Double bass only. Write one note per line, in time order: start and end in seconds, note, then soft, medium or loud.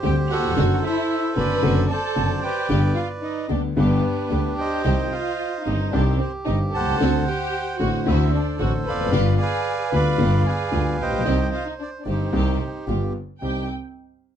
0.04 0.26 D2 medium
0.57 0.79 F#1 medium
1.37 1.59 F#1 medium
1.64 1.86 F#1 loud
2.17 2.39 F#1 medium
2.70 2.92 G1 medium
3.50 3.72 D2 medium
3.77 3.99 G1 loud
4.31 4.54 D2 medium
4.85 5.08 C2 medium
5.66 5.89 G1 medium
5.93 6.16 C2 loud
6.47 6.69 G1 medium
6.74 7.00 C2 medium
7.00 7.23 D2 medium
7.80 8.03 A1 medium
8.07 8.29 D2 loud
8.60 8.83 A1 medium
8.87 9.13 F1 medium
9.14 9.36 G1 medium
9.93 10.15 D2 medium
10.20 10.42 G1 loud
10.73 10.95 D2 medium
11.00 11.25 A#1 medium
11.26 11.48 C2 medium
12.06 12.29 G1 medium
12.33 12.56 C2 loud
12.88 13.11 G1 medium
13.42 13.65 C2 medium